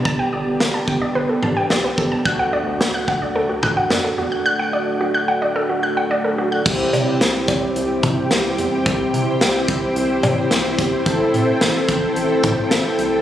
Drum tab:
CC |--------|--------|--------|x-------|
HH |--------|--------|--------|-xxxxxxx|
CB |--------|--------|--------|-x-x----|
SD |--o---o-|--o---o-|--------|--o---o-|
T2 |-----o--|-----o--|--------|-----o--|
BD |o--o---o|o--o-o--|--------|o--o-o--|

CC |--------|--------|
HH |xxxxxxxx|xxxxxxxx|
CB |-----x--|--------|
SD |--o---o-|--o---o-|
T2 |-----o--|-----o--|
BD |o--o---o|o--o-o--|